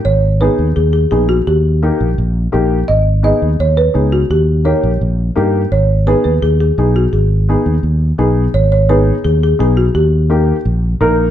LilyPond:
<<
  \new Staff \with { instrumentName = "Marimba" } { \time 4/4 \key gis \minor \tempo 4 = 170 cis''4 b'4 gis'8 gis'8 gis'8 fis'8 | g'2.~ g'8 r8 | dis''4 dis''4 cis''8 b'4 fis'8 | g'4 cis''2~ cis''8 r8 |
cis''4 b'8 b'8 gis'8 gis'4 fis'8 | gis'2.~ gis'8 r8 | cis''8 cis''8 b'4 gis'8 gis'8 gis'8 fis'8 | g'2.~ g'8 r8 | }
  \new Staff \with { instrumentName = "Upright piano" } { \time 4/4 \key gis \minor r4 <b dis' gis'>8 r4. <b dis' gis'>8 r8 | r4 <ais dis' g'>8 r4. <ais dis' g'>8 r8 | r4 <b dis' gis'>8 r4. <b dis' gis'>8 r8 | r4 <ais dis' g'>8 r4. <ais dis' g'>8 r8 |
r4 <b dis' gis'>8 r4. <b dis' gis'>8 r8 | r4 <b dis' gis'>8 r4. <b dis' gis'>8 r8 | r4 <b dis' gis'>8 r4. <b dis' gis'>8 r8 | r4 <ais dis' g'>8 r4. <ais dis' ais'>8 r8 | }
  \new Staff \with { instrumentName = "Fingered electric bass" } { \clef bass \time 4/4 \key gis \minor gis,,4. dis,8 dis,4 ais,,4 | dis,4. ais,,8 ais,,4 ais,,4 | gis,,4. dis,8 dis,4 cis,4 | dis,4. ais,,8 ais,,4 g,4 |
gis,,4. dis,8 dis,4 b,,4 | gis,,4. dis,8 dis,4 b,,4 | gis,,2 dis,4 b,,4 | dis,2 ais,,4 ais,,4 | }
>>